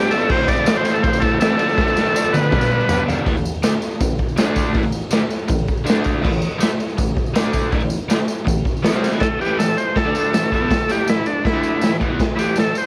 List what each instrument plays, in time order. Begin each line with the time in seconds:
Already playing: overdriven electric guitar D3 G3 B3 D4, transistor combo organ G4
0.11 overdriven electric guitar B3 D4, transistor combo organ A4, ride, tambourine
0.16 overdriven electric guitar G3
0.21 tambourine
0.29 overdriven electric guitar A2 E3 A3, transistor combo organ C5, kick, tambourine, crash
0.34 overdriven electric guitar C4 E4
0.47 overdriven electric guitar C4 E4, transistor combo organ D5, kick, ride, tambourine
0.53 overdriven electric guitar A3
0.57 tambourine
0.65 overdriven electric guitar A2 E3 A3 C4, snare, ride, tambourine
0.70 overdriven electric guitar E4
0.76 transistor combo organ C5, tambourine
0.85 ride, tambourine
0.94 transistor combo organ A4
1.03 transistor combo organ C5, kick, ride, tambourine
1.13 tambourine
1.20 overdriven electric guitar C4 E4, transistor combo organ A4, kick, ride, tambourine
1.26 overdriven electric guitar A3
1.39 overdriven electric guitar E3 A3 C4, transistor combo organ A4, snare, ride, tambourine
1.44 overdriven electric guitar E4
1.57 overdriven electric guitar F3 A3 D4, transistor combo organ A4, ride, tambourine
1.63 overdriven electric guitar D3
1.69 tambourine
1.75 overdriven electric guitar D3 F3, kick, snare, tambourine
1.80 overdriven electric guitar A3 D4
1.88 tambourine
1.95 overdriven electric guitar A3 D4, snare, tambourine
1.99 overdriven electric guitar F3
2.06 tambourine
2.13 overdriven electric guitar D3 F3 A3 D4, tambourine
2.25 tambourine
2.33 transistor combo organ B4, high tom, tambourine
2.51 overdriven electric guitar G2 D3 G3 B3, kick, mid tom, tambourine
2.55 overdriven electric guitar D4
2.61 tambourine
2.70 overdriven electric guitar B3 D4
2.75 overdriven electric guitar G3
2.80 tambourine
2.87 overdriven electric guitar D3 G3, floor tom, tambourine
2.92 overdriven electric guitar B3 D4
3.00 tambourine
3.06 overdriven electric guitar B3 D4, floor tom, tambourine
3.11 overdriven electric guitar G3
3.18 tambourine
3.25 overdriven electric guitar A2 E3, kick, open hi-hat, tambourine
3.36 overdriven electric guitar A2 E3, tambourine
3.45 tambourine
3.54 tambourine
3.63 overdriven electric guitar D3 A3, snare, open hi-hat, tambourine
3.82 tambourine
3.91 tambourine
4.00 overdriven electric guitar A2 E3, kick, open hi-hat, tambourine
4.10 tambourine
4.19 kick, tambourine
4.28 tambourine
4.36 overdriven electric guitar D3 A3 D4, snare, open hi-hat, tambourine
4.56 kick, tambourine
4.74 overdriven electric guitar A2 E3, kick, open hi-hat, tambourine
4.83 overdriven electric guitar A2 E3, tambourine
4.92 tambourine
5.02 tambourine
5.11 overdriven electric guitar D3 A3, snare, open hi-hat, tambourine
5.21 tambourine
5.30 tambourine
5.39 tambourine
5.48 overdriven electric guitar A2 E3, kick, open hi-hat, tambourine
5.59 tambourine
5.68 kick, tambourine
5.77 tambourine
5.85 overdriven electric guitar D3 A3 D4, open hi-hat, tambourine
5.90 snare
5.96 tambourine
6.04 kick, tambourine
6.22 overdriven electric guitar A2 E3, kick, tambourine, crash
6.32 overdriven electric guitar A2 E3, tambourine
6.42 tambourine
6.51 tambourine
6.59 overdriven electric guitar D3 A3, open hi-hat, tambourine
6.63 snare
6.71 tambourine
6.80 tambourine
6.89 tambourine
6.98 overdriven electric guitar A2 E3, kick, open hi-hat, tambourine
7.08 tambourine
7.17 kick, tambourine
7.26 tambourine
7.34 overdriven electric guitar D3 A3 D4, snare, open hi-hat, tambourine
7.45 tambourine
7.53 kick, tambourine
7.71 overdriven electric guitar A2 E3, kick, open hi-hat, tambourine
7.80 overdriven electric guitar A2 E3, tambourine
7.90 tambourine
8.09 overdriven electric guitar D3 A3, snare, open hi-hat, tambourine
8.28 tambourine
8.45 overdriven electric guitar A2 E3, kick, open hi-hat, tambourine
8.58 tambourine
8.65 kick, tambourine
8.77 tambourine
8.83 overdriven electric guitar E3 B3, snare, open hi-hat, tambourine
8.92 overdriven electric guitar C3 G3 C4, tambourine
9.04 snare, tambourine
9.11 overdriven electric guitar A2 E3, tambourine
9.20 transistor combo organ A4, kick, snare, crash, tambourine
9.39 overdriven electric guitar A2 E3 A3, transistor combo organ G4, tambourine
9.58 overdriven electric guitar A2 E3, transistor combo organ A4, snare, tambourine, crash
9.78 transistor combo organ C5, tambourine
9.96 transistor combo organ A4, muted overdriven electric guitar stroke, kick, snare, tambourine, crash
10.05 overdriven electric guitar D3 A3 D4
10.15 tambourine
10.33 overdriven electric guitar A2 E3, snare, tambourine, crash
10.43 overdriven electric guitar A2 E3
10.52 overdriven electric guitar A2 E3, transistor combo organ A4, kick, tambourine
10.60 overdriven electric guitar E3 B3
10.70 kick, snare, tambourine, crash
10.89 overdriven electric guitar A2 E3 A3, transistor combo organ G4, tambourine
11.08 overdriven electric guitar A2 E3, transistor combo organ E4, snare, tambourine, crash
11.26 transistor combo organ D4, tambourine
11.45 transistor combo organ E4, muted overdriven electric guitar stroke, kick, snare, tambourine, crash
11.53 overdriven electric guitar D3 A3 D4
11.64 tambourine
11.81 overdriven electric guitar A2 E3, snare, tambourine, crash
11.91 overdriven electric guitar A2 E3
12.00 overdriven electric guitar A2 E3, kick, tambourine
12.09 overdriven electric guitar E3 B3
12.20 kick, snare, tambourine, crash
12.36 overdriven electric guitar A2 E3 A3, transistor combo organ E4 G4, tambourine
12.56 overdriven electric guitar A2 E3, transistor combo organ A4, snare, tambourine, crash
12.75 transistor combo organ C5, tambourine